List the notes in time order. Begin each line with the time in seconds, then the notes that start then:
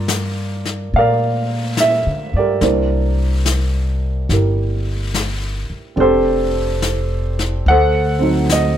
Already playing: G2 A#3 D4 F4 A#4 D5
0.08 snare, hi-hat pedal
0.65 snare
0.93 A#2 F5, brush sweep
0.98 A#4 D5
1.77 E5, snare, hi-hat pedal
2.06 D3
2.34 G2 D5
2.38 G4 A#4
2.61 C2 A#3 D4 E4 C5, brush sweep, snare
3.46 snare, hi-hat pedal
4.29 G1 E4 G4, brush sweep, snare
4.33 A#4
5.14 snare, hi-hat pedal
5.70 muted upright bass stroke
5.96 F1 C4 D4 G4 A4, brush sweep
6.00 G4 A4 C5
6.82 snare, hi-hat pedal
7.39 snare
7.66 D2 F#5, brush sweep
7.70 A4 C5
8.19 F#3 C4 D#4
8.24 C5
8.49 D#5, snare, hi-hat pedal